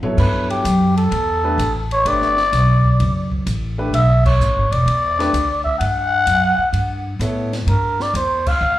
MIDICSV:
0, 0, Header, 1, 6, 480
1, 0, Start_track
1, 0, Tempo, 469116
1, 180, Time_signature, 4, 2, 24, 8
1, 8993, End_track
2, 0, Start_track
2, 0, Title_t, "Muted trumpet"
2, 0, Program_c, 0, 59
2, 197, Note_on_c, 0, 71, 92
2, 495, Note_off_c, 0, 71, 0
2, 516, Note_on_c, 0, 67, 78
2, 959, Note_off_c, 0, 67, 0
2, 989, Note_on_c, 0, 69, 96
2, 1908, Note_off_c, 0, 69, 0
2, 1969, Note_on_c, 0, 73, 105
2, 2124, Note_on_c, 0, 74, 126
2, 2139, Note_off_c, 0, 73, 0
2, 3551, Note_off_c, 0, 74, 0
2, 4031, Note_on_c, 0, 76, 99
2, 4330, Note_off_c, 0, 76, 0
2, 4358, Note_on_c, 0, 73, 84
2, 4826, Note_on_c, 0, 74, 105
2, 4841, Note_off_c, 0, 73, 0
2, 5764, Note_off_c, 0, 74, 0
2, 5770, Note_on_c, 0, 76, 100
2, 5912, Note_off_c, 0, 76, 0
2, 5919, Note_on_c, 0, 78, 125
2, 7327, Note_off_c, 0, 78, 0
2, 7869, Note_on_c, 0, 70, 91
2, 8205, Note_on_c, 0, 74, 90
2, 8220, Note_off_c, 0, 70, 0
2, 8343, Note_off_c, 0, 74, 0
2, 8350, Note_on_c, 0, 72, 96
2, 8676, Note_on_c, 0, 77, 115
2, 8691, Note_off_c, 0, 72, 0
2, 8993, Note_off_c, 0, 77, 0
2, 8993, End_track
3, 0, Start_track
3, 0, Title_t, "Grand piano"
3, 0, Program_c, 1, 0
3, 32, Note_on_c, 1, 59, 55
3, 36, Note_on_c, 1, 54, 63
3, 41, Note_on_c, 1, 69, 57
3, 42, Note_on_c, 1, 64, 60
3, 42, Note_on_c, 1, 73, 76
3, 632, Note_off_c, 1, 59, 0
3, 634, Note_off_c, 1, 54, 0
3, 637, Note_off_c, 1, 64, 0
3, 637, Note_off_c, 1, 69, 0
3, 637, Note_off_c, 1, 73, 0
3, 1467, Note_on_c, 1, 57, 70
3, 1476, Note_on_c, 1, 62, 59
3, 1481, Note_on_c, 1, 67, 62
3, 1482, Note_on_c, 1, 71, 77
3, 1605, Note_off_c, 1, 57, 0
3, 1609, Note_off_c, 1, 62, 0
3, 1612, Note_off_c, 1, 67, 0
3, 1612, Note_off_c, 1, 71, 0
3, 2103, Note_on_c, 1, 57, 63
3, 2105, Note_on_c, 1, 62, 62
3, 2111, Note_on_c, 1, 67, 56
3, 2112, Note_on_c, 1, 71, 73
3, 2397, Note_off_c, 1, 57, 0
3, 2398, Note_off_c, 1, 62, 0
3, 2401, Note_off_c, 1, 67, 0
3, 2402, Note_off_c, 1, 71, 0
3, 3869, Note_on_c, 1, 57, 68
3, 3871, Note_on_c, 1, 62, 60
3, 3875, Note_on_c, 1, 67, 63
3, 3879, Note_on_c, 1, 71, 81
3, 4005, Note_off_c, 1, 57, 0
3, 4006, Note_off_c, 1, 62, 0
3, 4008, Note_off_c, 1, 67, 0
3, 4010, Note_off_c, 1, 71, 0
3, 5307, Note_on_c, 1, 57, 71
3, 5309, Note_on_c, 1, 62, 77
3, 5317, Note_on_c, 1, 67, 66
3, 5322, Note_on_c, 1, 71, 85
3, 5444, Note_off_c, 1, 57, 0
3, 5444, Note_off_c, 1, 62, 0
3, 5448, Note_off_c, 1, 67, 0
3, 5451, Note_off_c, 1, 71, 0
3, 7371, Note_on_c, 1, 59, 63
3, 7378, Note_on_c, 1, 64, 62
3, 7382, Note_on_c, 1, 69, 51
3, 7383, Note_on_c, 1, 73, 62
3, 7669, Note_off_c, 1, 59, 0
3, 7673, Note_off_c, 1, 64, 0
3, 7675, Note_off_c, 1, 69, 0
3, 7675, Note_off_c, 1, 73, 0
3, 8993, End_track
4, 0, Start_track
4, 0, Title_t, "Upright bass"
4, 0, Program_c, 2, 32
4, 178, Note_on_c, 2, 43, 83
4, 645, Note_off_c, 2, 43, 0
4, 660, Note_on_c, 2, 42, 94
4, 1126, Note_off_c, 2, 42, 0
4, 1140, Note_on_c, 2, 40, 95
4, 1606, Note_off_c, 2, 40, 0
4, 1613, Note_on_c, 2, 33, 87
4, 2082, Note_off_c, 2, 33, 0
4, 2100, Note_on_c, 2, 31, 80
4, 2566, Note_off_c, 2, 31, 0
4, 2580, Note_on_c, 2, 35, 93
4, 3046, Note_off_c, 2, 35, 0
4, 3068, Note_on_c, 2, 30, 92
4, 3529, Note_off_c, 2, 30, 0
4, 3544, Note_on_c, 2, 33, 90
4, 4007, Note_off_c, 2, 33, 0
4, 4020, Note_on_c, 2, 35, 83
4, 4485, Note_off_c, 2, 35, 0
4, 4503, Note_on_c, 2, 33, 88
4, 4665, Note_off_c, 2, 33, 0
4, 4665, Note_on_c, 2, 31, 59
4, 4818, Note_off_c, 2, 31, 0
4, 4824, Note_on_c, 2, 28, 70
4, 4965, Note_off_c, 2, 28, 0
4, 4971, Note_on_c, 2, 40, 85
4, 5440, Note_off_c, 2, 40, 0
4, 5456, Note_on_c, 2, 38, 88
4, 5923, Note_off_c, 2, 38, 0
4, 5940, Note_on_c, 2, 43, 85
4, 6405, Note_off_c, 2, 43, 0
4, 6411, Note_on_c, 2, 42, 84
4, 6720, Note_off_c, 2, 42, 0
4, 6882, Note_on_c, 2, 43, 87
4, 7355, Note_off_c, 2, 43, 0
4, 7360, Note_on_c, 2, 45, 89
4, 7834, Note_off_c, 2, 45, 0
4, 7843, Note_on_c, 2, 43, 81
4, 8316, Note_off_c, 2, 43, 0
4, 8326, Note_on_c, 2, 40, 94
4, 8797, Note_off_c, 2, 40, 0
4, 8808, Note_on_c, 2, 38, 94
4, 8993, Note_off_c, 2, 38, 0
4, 8993, End_track
5, 0, Start_track
5, 0, Title_t, "Muted upright bass strokes"
5, 35, Note_on_c, 9, 29, 32
5, 137, Note_off_c, 9, 29, 0
5, 6732, Note_on_c, 9, 29, 44
5, 6835, Note_off_c, 9, 29, 0
5, 8993, End_track
6, 0, Start_track
6, 0, Title_t, "Drums"
6, 28, Note_on_c, 9, 43, 71
6, 131, Note_off_c, 9, 43, 0
6, 182, Note_on_c, 9, 36, 80
6, 184, Note_on_c, 9, 49, 81
6, 285, Note_off_c, 9, 36, 0
6, 286, Note_off_c, 9, 49, 0
6, 516, Note_on_c, 9, 51, 50
6, 618, Note_off_c, 9, 51, 0
6, 667, Note_on_c, 9, 44, 54
6, 667, Note_on_c, 9, 51, 75
6, 769, Note_off_c, 9, 44, 0
6, 769, Note_off_c, 9, 51, 0
6, 997, Note_on_c, 9, 51, 50
6, 1100, Note_off_c, 9, 51, 0
6, 1145, Note_on_c, 9, 51, 59
6, 1247, Note_off_c, 9, 51, 0
6, 1630, Note_on_c, 9, 44, 60
6, 1630, Note_on_c, 9, 51, 62
6, 1732, Note_off_c, 9, 44, 0
6, 1732, Note_off_c, 9, 51, 0
6, 1955, Note_on_c, 9, 51, 50
6, 2058, Note_off_c, 9, 51, 0
6, 2105, Note_on_c, 9, 51, 65
6, 2207, Note_off_c, 9, 51, 0
6, 2268, Note_on_c, 9, 38, 29
6, 2370, Note_off_c, 9, 38, 0
6, 2425, Note_on_c, 9, 38, 45
6, 2527, Note_off_c, 9, 38, 0
6, 2585, Note_on_c, 9, 38, 36
6, 2587, Note_on_c, 9, 44, 55
6, 2587, Note_on_c, 9, 51, 71
6, 2687, Note_off_c, 9, 38, 0
6, 2689, Note_off_c, 9, 44, 0
6, 2689, Note_off_c, 9, 51, 0
6, 2911, Note_on_c, 9, 36, 59
6, 3013, Note_off_c, 9, 36, 0
6, 3068, Note_on_c, 9, 51, 65
6, 3170, Note_off_c, 9, 51, 0
6, 3392, Note_on_c, 9, 36, 64
6, 3494, Note_off_c, 9, 36, 0
6, 3546, Note_on_c, 9, 44, 59
6, 3546, Note_on_c, 9, 51, 66
6, 3649, Note_off_c, 9, 44, 0
6, 3649, Note_off_c, 9, 51, 0
6, 4028, Note_on_c, 9, 51, 68
6, 4131, Note_off_c, 9, 51, 0
6, 4353, Note_on_c, 9, 36, 91
6, 4355, Note_on_c, 9, 49, 79
6, 4455, Note_off_c, 9, 36, 0
6, 4458, Note_off_c, 9, 49, 0
6, 4512, Note_on_c, 9, 44, 57
6, 4614, Note_off_c, 9, 44, 0
6, 4834, Note_on_c, 9, 51, 54
6, 4936, Note_off_c, 9, 51, 0
6, 4989, Note_on_c, 9, 51, 59
6, 5092, Note_off_c, 9, 51, 0
6, 5320, Note_on_c, 9, 38, 35
6, 5322, Note_on_c, 9, 51, 46
6, 5423, Note_off_c, 9, 38, 0
6, 5425, Note_off_c, 9, 51, 0
6, 5464, Note_on_c, 9, 44, 64
6, 5464, Note_on_c, 9, 51, 71
6, 5566, Note_off_c, 9, 44, 0
6, 5566, Note_off_c, 9, 51, 0
6, 5789, Note_on_c, 9, 36, 54
6, 5891, Note_off_c, 9, 36, 0
6, 5941, Note_on_c, 9, 51, 63
6, 6043, Note_off_c, 9, 51, 0
6, 6413, Note_on_c, 9, 44, 67
6, 6413, Note_on_c, 9, 51, 77
6, 6516, Note_off_c, 9, 44, 0
6, 6516, Note_off_c, 9, 51, 0
6, 6891, Note_on_c, 9, 51, 65
6, 6993, Note_off_c, 9, 51, 0
6, 7374, Note_on_c, 9, 44, 53
6, 7374, Note_on_c, 9, 51, 67
6, 7476, Note_off_c, 9, 44, 0
6, 7476, Note_off_c, 9, 51, 0
6, 7704, Note_on_c, 9, 38, 45
6, 7707, Note_on_c, 9, 51, 46
6, 7807, Note_off_c, 9, 38, 0
6, 7809, Note_off_c, 9, 51, 0
6, 7854, Note_on_c, 9, 51, 68
6, 7956, Note_off_c, 9, 51, 0
6, 8185, Note_on_c, 9, 38, 43
6, 8287, Note_off_c, 9, 38, 0
6, 8338, Note_on_c, 9, 44, 51
6, 8338, Note_on_c, 9, 51, 69
6, 8440, Note_off_c, 9, 44, 0
6, 8440, Note_off_c, 9, 51, 0
6, 8661, Note_on_c, 9, 49, 78
6, 8665, Note_on_c, 9, 36, 94
6, 8763, Note_off_c, 9, 49, 0
6, 8767, Note_off_c, 9, 36, 0
6, 8993, End_track
0, 0, End_of_file